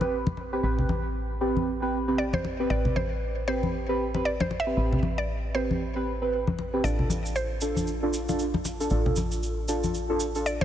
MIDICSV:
0, 0, Header, 1, 5, 480
1, 0, Start_track
1, 0, Key_signature, 0, "minor"
1, 0, Tempo, 517241
1, 586, Time_signature, 4, 2, 24, 8
1, 9882, End_track
2, 0, Start_track
2, 0, Title_t, "Synth pluck"
2, 0, Program_c, 0, 84
2, 0, Note_on_c, 0, 72, 96
2, 309, Note_off_c, 0, 72, 0
2, 2026, Note_on_c, 0, 74, 87
2, 2090, Note_off_c, 0, 74, 0
2, 2168, Note_on_c, 0, 72, 82
2, 2507, Note_on_c, 0, 74, 93
2, 2516, Note_off_c, 0, 72, 0
2, 2730, Note_off_c, 0, 74, 0
2, 2747, Note_on_c, 0, 72, 87
2, 3215, Note_off_c, 0, 72, 0
2, 3226, Note_on_c, 0, 72, 90
2, 3947, Note_on_c, 0, 74, 98
2, 3968, Note_off_c, 0, 72, 0
2, 4011, Note_off_c, 0, 74, 0
2, 4088, Note_on_c, 0, 72, 85
2, 4266, Note_on_c, 0, 76, 108
2, 4272, Note_off_c, 0, 72, 0
2, 4808, Note_on_c, 0, 74, 97
2, 4825, Note_off_c, 0, 76, 0
2, 5146, Note_on_c, 0, 72, 82
2, 5156, Note_off_c, 0, 74, 0
2, 6069, Note_off_c, 0, 72, 0
2, 6347, Note_on_c, 0, 74, 110
2, 6827, Note_on_c, 0, 72, 98
2, 6841, Note_off_c, 0, 74, 0
2, 7990, Note_off_c, 0, 72, 0
2, 9707, Note_on_c, 0, 74, 103
2, 9849, Note_on_c, 0, 72, 104
2, 9854, Note_off_c, 0, 74, 0
2, 9882, Note_off_c, 0, 72, 0
2, 9882, End_track
3, 0, Start_track
3, 0, Title_t, "Synth stab"
3, 0, Program_c, 1, 62
3, 9, Note_on_c, 1, 60, 77
3, 9, Note_on_c, 1, 67, 71
3, 10, Note_on_c, 1, 71, 84
3, 153, Note_off_c, 1, 60, 0
3, 154, Note_off_c, 1, 67, 0
3, 154, Note_off_c, 1, 71, 0
3, 489, Note_on_c, 1, 60, 83
3, 489, Note_on_c, 1, 67, 74
3, 490, Note_on_c, 1, 71, 92
3, 572, Note_off_c, 1, 60, 0
3, 572, Note_off_c, 1, 67, 0
3, 572, Note_off_c, 1, 71, 0
3, 586, Note_on_c, 1, 60, 87
3, 587, Note_on_c, 1, 67, 82
3, 587, Note_on_c, 1, 71, 100
3, 845, Note_off_c, 1, 60, 0
3, 845, Note_off_c, 1, 67, 0
3, 845, Note_off_c, 1, 71, 0
3, 1306, Note_on_c, 1, 60, 76
3, 1307, Note_on_c, 1, 67, 70
3, 1308, Note_on_c, 1, 71, 81
3, 1565, Note_off_c, 1, 60, 0
3, 1565, Note_off_c, 1, 67, 0
3, 1565, Note_off_c, 1, 71, 0
3, 1689, Note_on_c, 1, 60, 83
3, 1689, Note_on_c, 1, 67, 76
3, 1690, Note_on_c, 1, 71, 92
3, 1834, Note_off_c, 1, 60, 0
3, 1834, Note_off_c, 1, 67, 0
3, 1834, Note_off_c, 1, 71, 0
3, 1929, Note_on_c, 1, 60, 77
3, 1929, Note_on_c, 1, 67, 72
3, 1930, Note_on_c, 1, 71, 86
3, 2074, Note_off_c, 1, 60, 0
3, 2074, Note_off_c, 1, 67, 0
3, 2074, Note_off_c, 1, 71, 0
3, 2408, Note_on_c, 1, 60, 83
3, 2409, Note_on_c, 1, 67, 76
3, 2410, Note_on_c, 1, 71, 88
3, 2492, Note_off_c, 1, 60, 0
3, 2492, Note_off_c, 1, 67, 0
3, 2493, Note_off_c, 1, 71, 0
3, 2506, Note_on_c, 1, 60, 91
3, 2507, Note_on_c, 1, 67, 83
3, 2508, Note_on_c, 1, 71, 98
3, 2765, Note_off_c, 1, 60, 0
3, 2765, Note_off_c, 1, 67, 0
3, 2765, Note_off_c, 1, 71, 0
3, 3226, Note_on_c, 1, 60, 77
3, 3227, Note_on_c, 1, 67, 69
3, 3227, Note_on_c, 1, 71, 82
3, 3484, Note_off_c, 1, 60, 0
3, 3485, Note_off_c, 1, 67, 0
3, 3485, Note_off_c, 1, 71, 0
3, 3608, Note_on_c, 1, 60, 87
3, 3609, Note_on_c, 1, 67, 74
3, 3610, Note_on_c, 1, 71, 93
3, 3753, Note_off_c, 1, 60, 0
3, 3754, Note_off_c, 1, 67, 0
3, 3754, Note_off_c, 1, 71, 0
3, 3848, Note_on_c, 1, 60, 77
3, 3849, Note_on_c, 1, 67, 70
3, 3850, Note_on_c, 1, 71, 87
3, 3993, Note_off_c, 1, 60, 0
3, 3994, Note_off_c, 1, 67, 0
3, 3994, Note_off_c, 1, 71, 0
3, 4329, Note_on_c, 1, 60, 83
3, 4329, Note_on_c, 1, 67, 74
3, 4330, Note_on_c, 1, 71, 91
3, 4412, Note_off_c, 1, 60, 0
3, 4412, Note_off_c, 1, 67, 0
3, 4413, Note_off_c, 1, 71, 0
3, 4427, Note_on_c, 1, 60, 89
3, 4427, Note_on_c, 1, 67, 84
3, 4428, Note_on_c, 1, 71, 98
3, 4685, Note_off_c, 1, 60, 0
3, 4685, Note_off_c, 1, 67, 0
3, 4686, Note_off_c, 1, 71, 0
3, 5147, Note_on_c, 1, 60, 78
3, 5148, Note_on_c, 1, 67, 70
3, 5148, Note_on_c, 1, 71, 85
3, 5405, Note_off_c, 1, 60, 0
3, 5405, Note_off_c, 1, 67, 0
3, 5406, Note_off_c, 1, 71, 0
3, 5529, Note_on_c, 1, 60, 83
3, 5530, Note_on_c, 1, 67, 76
3, 5531, Note_on_c, 1, 71, 93
3, 5674, Note_off_c, 1, 60, 0
3, 5674, Note_off_c, 1, 67, 0
3, 5674, Note_off_c, 1, 71, 0
3, 5769, Note_on_c, 1, 60, 79
3, 5770, Note_on_c, 1, 67, 74
3, 5770, Note_on_c, 1, 71, 88
3, 5913, Note_off_c, 1, 60, 0
3, 5914, Note_off_c, 1, 67, 0
3, 5914, Note_off_c, 1, 71, 0
3, 6249, Note_on_c, 1, 60, 82
3, 6250, Note_on_c, 1, 67, 75
3, 6250, Note_on_c, 1, 71, 89
3, 6332, Note_off_c, 1, 60, 0
3, 6332, Note_off_c, 1, 67, 0
3, 6333, Note_off_c, 1, 71, 0
3, 6346, Note_on_c, 1, 62, 94
3, 6347, Note_on_c, 1, 65, 86
3, 6348, Note_on_c, 1, 69, 101
3, 6605, Note_off_c, 1, 62, 0
3, 6605, Note_off_c, 1, 65, 0
3, 6605, Note_off_c, 1, 69, 0
3, 7067, Note_on_c, 1, 62, 73
3, 7067, Note_on_c, 1, 65, 70
3, 7068, Note_on_c, 1, 69, 87
3, 7325, Note_off_c, 1, 62, 0
3, 7325, Note_off_c, 1, 65, 0
3, 7326, Note_off_c, 1, 69, 0
3, 7449, Note_on_c, 1, 62, 84
3, 7449, Note_on_c, 1, 65, 75
3, 7450, Note_on_c, 1, 69, 91
3, 7593, Note_off_c, 1, 62, 0
3, 7594, Note_off_c, 1, 65, 0
3, 7594, Note_off_c, 1, 69, 0
3, 7689, Note_on_c, 1, 62, 77
3, 7689, Note_on_c, 1, 65, 75
3, 7690, Note_on_c, 1, 69, 88
3, 7834, Note_off_c, 1, 62, 0
3, 7834, Note_off_c, 1, 65, 0
3, 7834, Note_off_c, 1, 69, 0
3, 8169, Note_on_c, 1, 62, 82
3, 8169, Note_on_c, 1, 65, 77
3, 8170, Note_on_c, 1, 69, 95
3, 8252, Note_off_c, 1, 62, 0
3, 8252, Note_off_c, 1, 65, 0
3, 8253, Note_off_c, 1, 69, 0
3, 8266, Note_on_c, 1, 62, 94
3, 8267, Note_on_c, 1, 65, 84
3, 8267, Note_on_c, 1, 69, 101
3, 8525, Note_off_c, 1, 62, 0
3, 8525, Note_off_c, 1, 65, 0
3, 8525, Note_off_c, 1, 69, 0
3, 8986, Note_on_c, 1, 62, 77
3, 8986, Note_on_c, 1, 65, 69
3, 8987, Note_on_c, 1, 69, 86
3, 9244, Note_off_c, 1, 62, 0
3, 9245, Note_off_c, 1, 65, 0
3, 9245, Note_off_c, 1, 69, 0
3, 9368, Note_on_c, 1, 62, 83
3, 9369, Note_on_c, 1, 65, 78
3, 9370, Note_on_c, 1, 69, 95
3, 9513, Note_off_c, 1, 62, 0
3, 9513, Note_off_c, 1, 65, 0
3, 9514, Note_off_c, 1, 69, 0
3, 9608, Note_on_c, 1, 62, 81
3, 9609, Note_on_c, 1, 65, 72
3, 9610, Note_on_c, 1, 69, 88
3, 9753, Note_off_c, 1, 62, 0
3, 9754, Note_off_c, 1, 65, 0
3, 9754, Note_off_c, 1, 69, 0
3, 9882, End_track
4, 0, Start_track
4, 0, Title_t, "FM bass"
4, 0, Program_c, 2, 39
4, 0, Note_on_c, 2, 33, 85
4, 567, Note_off_c, 2, 33, 0
4, 586, Note_on_c, 2, 33, 86
4, 2487, Note_off_c, 2, 33, 0
4, 2507, Note_on_c, 2, 33, 85
4, 4407, Note_off_c, 2, 33, 0
4, 4427, Note_on_c, 2, 33, 88
4, 6327, Note_off_c, 2, 33, 0
4, 6347, Note_on_c, 2, 33, 81
4, 8247, Note_off_c, 2, 33, 0
4, 8267, Note_on_c, 2, 33, 85
4, 9882, Note_off_c, 2, 33, 0
4, 9882, End_track
5, 0, Start_track
5, 0, Title_t, "Drums"
5, 8, Note_on_c, 9, 62, 57
5, 101, Note_off_c, 9, 62, 0
5, 247, Note_on_c, 9, 62, 60
5, 247, Note_on_c, 9, 63, 76
5, 340, Note_off_c, 9, 62, 0
5, 340, Note_off_c, 9, 63, 0
5, 345, Note_on_c, 9, 62, 58
5, 438, Note_off_c, 9, 62, 0
5, 729, Note_on_c, 9, 64, 83
5, 821, Note_off_c, 9, 64, 0
5, 827, Note_on_c, 9, 63, 91
5, 920, Note_off_c, 9, 63, 0
5, 1452, Note_on_c, 9, 63, 67
5, 1544, Note_off_c, 9, 63, 0
5, 2164, Note_on_c, 9, 63, 83
5, 2256, Note_off_c, 9, 63, 0
5, 2269, Note_on_c, 9, 62, 59
5, 2362, Note_off_c, 9, 62, 0
5, 2645, Note_on_c, 9, 64, 83
5, 2738, Note_off_c, 9, 64, 0
5, 2749, Note_on_c, 9, 63, 94
5, 2842, Note_off_c, 9, 63, 0
5, 3370, Note_on_c, 9, 63, 70
5, 3462, Note_off_c, 9, 63, 0
5, 3846, Note_on_c, 9, 62, 62
5, 3939, Note_off_c, 9, 62, 0
5, 4086, Note_on_c, 9, 62, 64
5, 4090, Note_on_c, 9, 63, 85
5, 4179, Note_off_c, 9, 62, 0
5, 4182, Note_off_c, 9, 63, 0
5, 4183, Note_on_c, 9, 62, 61
5, 4276, Note_off_c, 9, 62, 0
5, 4570, Note_on_c, 9, 64, 86
5, 4663, Note_off_c, 9, 64, 0
5, 4664, Note_on_c, 9, 63, 89
5, 4757, Note_off_c, 9, 63, 0
5, 5295, Note_on_c, 9, 63, 68
5, 5388, Note_off_c, 9, 63, 0
5, 6008, Note_on_c, 9, 63, 88
5, 6101, Note_off_c, 9, 63, 0
5, 6111, Note_on_c, 9, 62, 60
5, 6204, Note_off_c, 9, 62, 0
5, 6355, Note_on_c, 9, 82, 34
5, 6447, Note_off_c, 9, 82, 0
5, 6487, Note_on_c, 9, 64, 75
5, 6580, Note_off_c, 9, 64, 0
5, 6586, Note_on_c, 9, 63, 86
5, 6593, Note_on_c, 9, 82, 75
5, 6679, Note_off_c, 9, 63, 0
5, 6686, Note_off_c, 9, 82, 0
5, 6733, Note_on_c, 9, 82, 50
5, 6826, Note_off_c, 9, 82, 0
5, 6827, Note_on_c, 9, 82, 37
5, 6919, Note_off_c, 9, 82, 0
5, 7063, Note_on_c, 9, 82, 86
5, 7156, Note_off_c, 9, 82, 0
5, 7205, Note_on_c, 9, 63, 65
5, 7210, Note_on_c, 9, 82, 54
5, 7298, Note_off_c, 9, 63, 0
5, 7303, Note_off_c, 9, 82, 0
5, 7305, Note_on_c, 9, 82, 39
5, 7398, Note_off_c, 9, 82, 0
5, 7548, Note_on_c, 9, 82, 84
5, 7641, Note_off_c, 9, 82, 0
5, 7690, Note_on_c, 9, 82, 46
5, 7694, Note_on_c, 9, 62, 59
5, 7782, Note_off_c, 9, 82, 0
5, 7787, Note_off_c, 9, 62, 0
5, 7787, Note_on_c, 9, 82, 39
5, 7880, Note_off_c, 9, 82, 0
5, 7925, Note_on_c, 9, 63, 77
5, 7930, Note_on_c, 9, 62, 56
5, 8018, Note_off_c, 9, 63, 0
5, 8023, Note_off_c, 9, 62, 0
5, 8027, Note_on_c, 9, 82, 88
5, 8028, Note_on_c, 9, 62, 57
5, 8119, Note_off_c, 9, 82, 0
5, 8120, Note_off_c, 9, 62, 0
5, 8170, Note_on_c, 9, 82, 50
5, 8258, Note_off_c, 9, 82, 0
5, 8258, Note_on_c, 9, 82, 34
5, 8351, Note_off_c, 9, 82, 0
5, 8408, Note_on_c, 9, 64, 84
5, 8500, Note_off_c, 9, 64, 0
5, 8501, Note_on_c, 9, 82, 84
5, 8513, Note_on_c, 9, 63, 87
5, 8594, Note_off_c, 9, 82, 0
5, 8606, Note_off_c, 9, 63, 0
5, 8644, Note_on_c, 9, 82, 46
5, 8737, Note_off_c, 9, 82, 0
5, 8750, Note_on_c, 9, 82, 35
5, 8843, Note_off_c, 9, 82, 0
5, 8986, Note_on_c, 9, 82, 80
5, 9079, Note_off_c, 9, 82, 0
5, 9127, Note_on_c, 9, 82, 51
5, 9131, Note_on_c, 9, 63, 60
5, 9220, Note_off_c, 9, 82, 0
5, 9224, Note_off_c, 9, 63, 0
5, 9227, Note_on_c, 9, 82, 35
5, 9320, Note_off_c, 9, 82, 0
5, 9464, Note_on_c, 9, 82, 83
5, 9557, Note_off_c, 9, 82, 0
5, 9604, Note_on_c, 9, 82, 44
5, 9697, Note_off_c, 9, 82, 0
5, 9709, Note_on_c, 9, 82, 37
5, 9802, Note_off_c, 9, 82, 0
5, 9849, Note_on_c, 9, 63, 82
5, 9882, Note_off_c, 9, 63, 0
5, 9882, End_track
0, 0, End_of_file